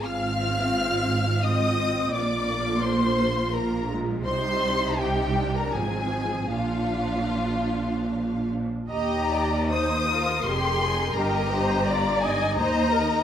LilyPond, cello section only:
\new Staff \with { instrumentName = "Cello section" } { \clef bass \time 3/4 \key ees \major \tempo 4 = 83 aes,2. | bes,2. | c2 aes,4 | bes,2~ bes,8 r8 |
ees,2 f,4 | g,2 ees,4 | }